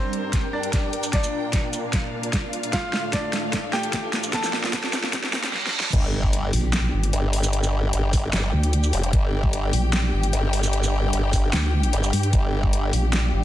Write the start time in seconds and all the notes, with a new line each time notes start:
Already playing: G2 G3 C4 D4 A#4 C5 F5, riser
0.13 closed hi-hat
0.24 G5
0.33 kick, snare, closed hi-hat
0.53 D4 D5
0.63 closed hi-hat
0.73 kick, snare, closed hi-hat
0.93 closed hi-hat
1.03 closed hi-hat, shaker
1.13 A#2 A#3 D4 F4 D5, kick, snare, closed hi-hat
1.23 shaker
1.53 kick, snare, closed hi-hat
1.73 closed hi-hat, shaker
1.85 F5
1.93 kick, snare, closed hi-hat
2.23 closed hi-hat
2.33 kick, snare, closed hi-hat
2.53 closed hi-hat
2.63 closed hi-hat
2.73 A2 A3 F4 F5, kick, snare, closed hi-hat
2.93 snare
3.13 D4 D5, kick, snare, closed hi-hat
3.30 D4, snare, closed hi-hat
3.45 A4
3.53 kick, snare, closed hi-hat
3.73 G4 G5, snare
3.83 closed hi-hat
3.93 kick, snare, closed hi-hat
4.13 snare, closed hi-hat
4.23 closed hi-hat, shaker
4.33 A#2 A#3 F4 A4 A5, kick, snare, closed hi-hat
4.43 snare, shaker
4.53 snare
4.62 A#3, snare
4.73 kick, snare, closed hi-hat
4.83 snare
4.93 snare, closed hi-hat, shaker
5.03 snare
5.13 kick, snare, closed hi-hat, reverse cymbal
5.23 snare
5.33 snare
5.43 snare, closed hi-hat
5.53 snare
5.66 snare
5.80 snare
5.93 G1 G3 D4 D5 G5, kick, closed hi-hat, crash, impact
6.06 G4
6.23 kick
6.33 closed hi-hat
6.53 A#1, open hi-hat
6.73 snare, closed hi-hat
6.93 G1
7.03 closed hi-hat
7.13 G1 G5, closed hi-hat
7.33 open hi-hat
7.43 closed hi-hat, shaker
7.53 closed hi-hat
7.63 shaker
7.93 G1, closed hi-hat
8.13 kick, open hi-hat, shaker
8.33 G1, snare, closed hi-hat
8.53 D2
8.63 closed hi-hat
8.73 closed hi-hat
8.83 shaker
8.93 F1, open hi-hat
9.03 closed hi-hat
9.13 G1, kick, closed hi-hat
9.43 kick
9.53 closed hi-hat
9.73 A#1, open hi-hat
9.93 snare, closed hi-hat
10.13 G1
10.23 closed hi-hat
10.33 G1, closed hi-hat
10.53 open hi-hat
10.63 closed hi-hat, shaker
10.73 closed hi-hat
10.83 shaker
11.13 G1, closed hi-hat
11.33 kick, open hi-hat, shaker
11.53 D2, snare, closed hi-hat
11.83 closed hi-hat
11.93 G1, closed hi-hat
12.03 shaker
12.13 G2, open hi-hat
12.23 closed hi-hat
12.33 G1 F5, kick, closed hi-hat
12.63 kick
12.73 closed hi-hat
12.93 A#1, open hi-hat
13.13 snare, closed hi-hat
13.33 G1